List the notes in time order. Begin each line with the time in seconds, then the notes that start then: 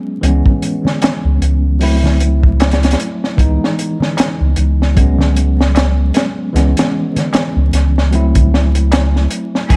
Already playing: F#3 G#3 B3 C#4
0.21 C#2 E3 G#3 B3 C#4, closed hi-hat
0.46 kick
0.62 closed hi-hat
0.85 snare, darbuka dum
1.02 snare, closed hi-hat, darbuka tek
1.24 C#2
1.41 C#2, closed hi-hat
1.79 F#3 A3 C4 E4, open hi-hat
2.04 snare, darbuka dum
2.20 closed hi-hat
2.43 kick
2.60 snare, closed hi-hat, darbuka tek
2.71 snare, closed hi-hat
2.83 snare, closed hi-hat
2.91 snare, closed hi-hat
3.00 closed hi-hat
3.24 snare
3.37 C#2 E3 G#3 B3 D#4, kick, closed hi-hat
3.64 snare
3.79 closed hi-hat
4.00 snare, darbuka dum
4.17 snare, closed hi-hat, darbuka tek
4.40 C#2
4.56 C#2, closed hi-hat
4.82 snare
4.95 F#3 G#3 B3 C#4, kick, closed hi-hat
5.18 snare, darbuka dum
5.36 closed hi-hat
5.61 snare
5.75 snare, closed hi-hat, darbuka tek
6.14 snare, closed hi-hat
6.53 C#2 E3 G#3 B3 C#4, closed hi-hat
6.57 snare
6.77 snare, closed hi-hat
7.16 snare, closed hi-hat, darbuka dum
7.33 snare, closed hi-hat, darbuka tek
7.56 C#2
7.72 C#2, snare, closed hi-hat
7.98 snare
8.11 F#3 A3 C4 E4, closed hi-hat
8.35 kick, closed hi-hat, darbuka dum
8.54 snare
8.75 closed hi-hat
8.91 snare, closed hi-hat, darbuka tek
9.16 snare
9.30 closed hi-hat
9.55 snare
9.69 C#2 E3 G#3 B3 D#4 G#4, kick, closed hi-hat